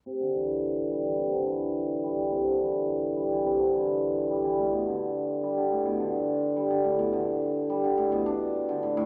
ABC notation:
X:1
M:4/4
L:1/16
Q:1/4=106
K:C
V:1 name="Hammered dulcimer" clef=bass
C, D, E,4 G, E, C, D, E,4 G, E, | C, D, E,4 G, E, C, D, E,4 G, E, | A,, B,, D,4 G, D, A,, B,, D,4 G, D, | A,, B,, D,4 G, D, A,, B,, D z2 D, A,, A,, |]